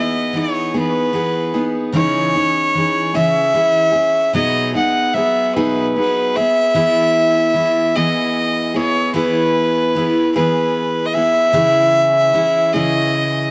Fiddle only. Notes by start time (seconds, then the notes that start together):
Already playing: D#5
0.38 C#5
0.79 B4
1.96 C#5
3.15 E5
4.34 D#5
4.76 F#5
5.14 E5
5.55 B4
6.37 E5
7.95 D#5
8.76 C#5
9.15 B4
10.35 B4
11.06 D#5
11.13 E5
12.73 D#5